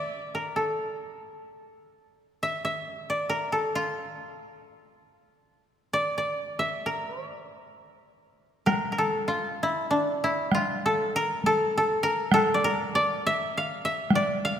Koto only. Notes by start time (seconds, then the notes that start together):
Already playing: D5 E5
0.35 A#4
0.56 A4
2.43 E5
2.65 E5
3.10 D5
3.29 A#4
3.52 A4
3.75 F4
5.93 D5
6.18 D5
6.59 E5
6.86 A#4
7.29 D5
8.66 A#4
8.92 A#4
8.98 A4
9.28 F4
9.63 E4
9.91 D4
10.24 E4
10.55 F4
10.86 A4
11.16 A#4
11.46 A4
11.78 A4
12.03 A#4
12.34 A4
12.54 D5
12.64 A#4
12.95 D5
13.27 E5
13.57 F5
13.85 E5
14.15 D5
14.45 F5